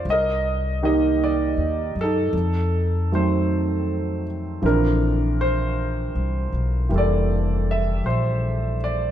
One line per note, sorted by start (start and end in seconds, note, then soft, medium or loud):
0.05 1.53 C2 medium
0.10 2.32 A#4 medium
0.10 0.84 D#5 medium
0.82 2.33 D#3 soft
0.82 2.34 A#3 soft
0.82 2.02 D#4 soft
0.82 2.34 G4 soft
0.82 1.19 D#5 medium
1.24 1.94 D5 medium
1.57 1.92 D#2 medium
1.95 2.31 F#2 medium
2.01 4.25 D#4 soft
2.01 3.09 A4 medium
2.33 4.58 F2 medium
3.12 4.63 D#3 soft
3.12 4.63 F#3 soft
3.12 4.63 A3 soft
3.12 4.62 C4 soft
3.12 4.23 C5 medium
4.62 6.10 A#1 medium
4.62 9.11 D3 soft
4.62 6.88 E3 soft
4.62 9.11 F3 soft
4.62 9.11 C4 soft
4.66 6.88 D4 soft
4.66 5.43 A#4 medium
5.41 6.50 C5 medium
6.15 6.50 C2 medium
6.52 6.87 B1 soft
6.89 7.99 F1 medium
6.89 9.11 E3 soft
6.89 9.11 G3 soft
6.89 9.11 A#3 soft
6.96 9.11 A4 medium
6.96 7.66 D5 medium
7.71 8.06 E5 medium
8.04 9.11 A#1 medium
8.04 8.76 C5 medium
8.84 9.11 D5 medium